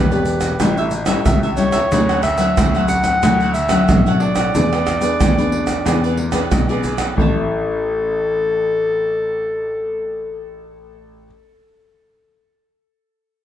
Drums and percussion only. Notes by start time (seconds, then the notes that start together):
0.12 pandeiro, shaker
0.25 pandeiro, shaker
0.41 pandeiro, tamborim, shaker, surdo
0.60 pandeiro, tamborim, shaker, surdo
0.77 pandeiro, shaker
0.91 pandeiro, shaker
1.06 pandeiro, tamborim, shaker, surdo
1.26 pandeiro, tamborim, shaker, surdo
1.43 pandeiro, shaker
1.57 pandeiro, shaker, surdo
1.72 pandeiro, tamborim, shaker, surdo
1.92 pandeiro, shaker, surdo
2.09 pandeiro, tamborim, shaker
2.23 pandeiro, tamborim, shaker, surdo
2.38 pandeiro, shaker
2.57 pandeiro, tamborim, shaker, surdo
2.75 pandeiro, shaker
2.88 pandeiro, shaker
3.04 pandeiro, tamborim, shaker, surdo
3.23 pandeiro, tamborim, shaker, surdo
3.41 pandeiro, shaker
3.54 pandeiro, shaker
3.69 pandeiro, tamborim, shaker, surdo
3.89 pandeiro, tamborim, shaker, surdo
4.07 pandeiro, shaker
4.20 pandeiro
4.36 pandeiro, tamborim, shaker, surdo
4.55 pandeiro, shaker, surdo
4.73 pandeiro, tamborim, shaker
4.87 pandeiro, tamborim, shaker, surdo
5.02 pandeiro, shaker
5.20 pandeiro, tamborim, shaker, surdo
5.39 pandeiro, shaker
5.52 pandeiro
5.67 pandeiro, tamborim, shaker, surdo
5.86 pandeiro, tamborim, shaker, surdo
6.04 pandeiro, shaker
6.17 pandeiro
6.32 pandeiro, tamborim, shaker, surdo
6.51 pandeiro, tamborim, shaker, surdo
6.69 pandeiro, shaker
6.84 pandeiro, shaker, surdo
6.98 pandeiro, tamborim, shaker, surdo
7.18 surdo